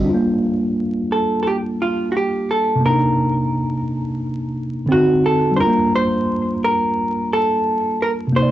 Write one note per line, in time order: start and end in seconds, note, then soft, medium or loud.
0.00 2.75 G3 medium
0.04 2.77 D4 medium
0.09 2.80 F4 medium
0.14 2.79 A#3 medium
1.12 1.41 A4 medium
1.43 1.46 A4 medium
1.47 1.56 G4 medium
1.82 2.11 F4 medium
2.12 2.15 F#4 medium
2.17 2.51 G4 medium
2.51 2.82 A4 medium
2.75 4.82 C3 medium
2.80 4.84 A#3 soft
2.85 4.87 D4 medium
2.85 4.97 A#4 medium
2.90 4.89 D#4 medium
4.86 5.57 D3 medium
4.86 5.58 C4 medium
4.91 5.59 D#4 medium
4.91 5.26 F#4 medium
4.91 5.60 F#4 medium
5.26 5.55 A4 medium
5.51 8.27 G3 medium
5.56 8.29 D4 medium
5.56 5.60 C5 medium
5.60 8.32 F4 medium
5.60 5.95 A#4 medium
5.67 8.31 A#3 medium
5.96 6.59 C5 medium
6.64 7.33 A#4 medium
7.33 8.03 A4 medium
8.02 8.11 A#4 medium
8.27 8.51 C3 medium
8.33 8.51 A#3 medium
8.33 8.51 C5 medium
8.37 8.51 D#4 medium
8.43 8.51 D5 medium